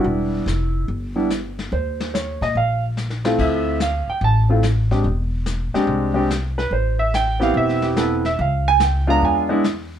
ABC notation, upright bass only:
X:1
M:4/4
L:1/8
Q:"Swing" 1/4=144
K:Ephr
V:1 name="Upright bass" clef=bass
E,,,2 F,,,2 G,,,4 | _E,,3 _B,, _B,,,4 | D,,3 z A,,,4 | E,,,3 z ^B,,,4 |
A,,,4 E,,,4 | _D,,4 E,,4 |]